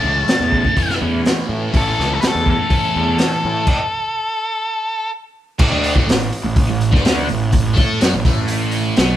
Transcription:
Already playing: A2 E3 A3 C#4 E4 A5
0.04 C#2
0.28 snare, open hi-hat
0.40 E2
0.52 kick
0.65 kick
0.75 A2 E3 A3 C#4 E4, kick, open hi-hat
0.90 snare
1.02 E2
1.25 snare, open hi-hat
1.49 A2
1.72 A1 A2 E3 A3 C#4 E4, kick, open hi-hat
1.77 A4
2.00 C#2, snare
2.14 A4
2.21 B4, snare, open hi-hat
2.27 A4
2.35 E2
2.46 kick
2.50 A4
2.69 A2 E3 A3 C#4 E4, kick, open hi-hat
2.96 E2
3.18 snare, open hi-hat
3.45 A2
3.67 kick, crash
5.59 A1 A2 A3, kick, crash
5.71 D2 D3 D4
5.83 open hi-hat
5.94 A1 A2 A3, kick
6.06 A1 A2, snare, open hi-hat
6.33 open hi-hat
6.44 A1 A2
6.56 kick, open hi-hat
6.68 A1 A2
6.81 open hi-hat
6.91 D2 D3 D4, kick, snare
7.05 snare, open hi-hat
7.26 A1 A2, open hi-hat
7.51 A1 A2, kick, open hi-hat
7.73 A2 A3 A4, kick, open hi-hat
8.00 F#2 F#3 F#4, snare, open hi-hat
8.12 A1 A2
8.25 A1 A2 A3, kick, open hi-hat
8.48 open hi-hat
8.71 open hi-hat
8.96 B1 B2 B3, snare, open hi-hat

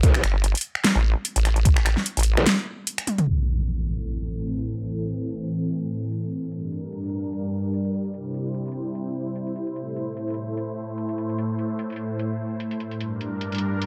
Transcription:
0.03 A1, kick, closed hi-hat
0.14 finger snap
0.24 G1, finger snap, closed hi-hat
0.44 closed hi-hat
0.55 closed hi-hat
0.57 closed hi-hat
0.61 closed hi-hat
0.75 finger snap
0.84 snare, closed hi-hat
0.95 A1
1.25 closed hi-hat
1.36 A1, closed hi-hat
1.45 finger snap, closed hi-hat
1.56 closed hi-hat
1.65 kick, closed hi-hat
1.76 finger snap
1.86 finger snap, closed hi-hat
1.97 snare
2.06 closed hi-hat
2.17 A1, closed hi-hat
2.19 closed hi-hat
2.23 closed hi-hat
2.37 A1, finger snap
2.46 snare, closed hi-hat
2.87 closed hi-hat
2.98 finger snap, closed hi-hat
3.07 closed hi-hat, high tom
3.18 closed hi-hat, mid tom
3.28 A2 E3 C4 A4, closed hi-hat, crash, impact
3.48 closed hi-hat
3.68 closed hi-hat
3.79 closed hi-hat
3.82 closed hi-hat
3.85 closed hi-hat
4.09 closed hi-hat
4.49 closed hi-hat
4.60 closed hi-hat
4.70 closed hi-hat
4.81 closed hi-hat
4.90 closed hi-hat
5.10 closed hi-hat
5.30 closed hi-hat
5.42 closed hi-hat
5.44 closed hi-hat
5.48 closed hi-hat
5.71 closed hi-hat
6.11 closed hi-hat
6.22 closed hi-hat
6.32 closed hi-hat
6.43 closed hi-hat
6.52 G2 G3 D4 A#4, closed hi-hat
6.72 closed hi-hat
6.92 closed hi-hat
7.04 closed hi-hat
7.06 closed hi-hat
7.10 closed hi-hat
7.33 closed hi-hat
7.74 closed hi-hat
7.85 closed hi-hat
7.94 closed hi-hat
8.05 closed hi-hat
8.14 C3 E4 C5, closed hi-hat
8.34 closed hi-hat
8.54 closed hi-hat
8.66 closed hi-hat
8.68 closed hi-hat
8.72 closed hi-hat
8.95 closed hi-hat
9.36 closed hi-hat
9.47 closed hi-hat
9.56 closed hi-hat
9.67 closed hi-hat
9.76 A2 A3, closed hi-hat
9.96 closed hi-hat
10.17 closed hi-hat
10.28 closed hi-hat
10.30 closed hi-hat
10.34 closed hi-hat
10.57 closed hi-hat
10.98 closed hi-hat
11.09 closed hi-hat
11.18 closed hi-hat
11.29 closed hi-hat
11.38 closed hi-hat
11.59 closed hi-hat
11.79 closed hi-hat
11.90 closed hi-hat
11.92 closed hi-hat
11.96 closed hi-hat
12.19 closed hi-hat
12.60 closed hi-hat
12.71 closed hi-hat
12.80 closed hi-hat
12.91 closed hi-hat
13.01 G2 G3 D4 A#4, closed hi-hat
13.21 closed hi-hat
13.41 closed hi-hat
13.52 closed hi-hat
13.55 closed hi-hat
13.58 closed hi-hat
13.82 closed hi-hat

